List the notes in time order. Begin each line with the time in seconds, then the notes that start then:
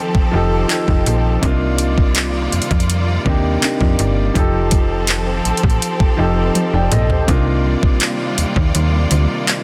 Already playing: D#3 F3 C4 D#4 G4 A4
0.15 F1, kick
0.31 F1 F3 D#4 G4
0.36 A4
0.68 F3 D#4 G4, clap, closed hi-hat
0.72 A4
0.88 F1, kick
1.06 A#1, closed hi-hat
1.41 C2 C3 G3 A#3 D4 D#4 F4 D5, kick, closed hi-hat
1.46 F4
1.78 closed hi-hat
1.98 kick
2.15 clap, closed hi-hat
2.52 F2, closed hi-hat
2.62 closed hi-hat
2.71 F2, kick, closed hi-hat
2.80 closed hi-hat
2.90 closed hi-hat
3.24 D#2 C3 A#3 D4 D#4, kick
3.29 G4
3.61 C3 A#3 D4 D#4, clap, closed hi-hat
3.65 G4
3.81 F2, kick
3.99 G1, closed hi-hat
4.34 F1 F3 C4 D#4 G4 A4, kick, closed hi-hat
4.39 A4
4.71 kick, closed hi-hat
5.07 clap, closed hi-hat
5.45 A1, closed hi-hat
5.57 closed hi-hat
5.63 A1, kick
5.70 closed hi-hat
5.82 closed hi-hat
6.00 F1, kick
6.17 F1 F3 D#4 G4
6.21 A4
6.55 closed hi-hat, high tom
6.74 F1 D5 G5
6.92 A#1 A4 D#5, closed hi-hat, mid tom
7.10 G4 C5, floor tom
7.26 C2 C3 A#3 D4 D#4 F4 D5, kick, closed hi-hat
7.31 F4
7.83 kick
8.00 clap, closed hi-hat
8.38 D#2, closed hi-hat
8.56 D#2, kick
8.75 D#2, closed hi-hat
9.11 D2, closed hi-hat
9.48 clap, closed hi-hat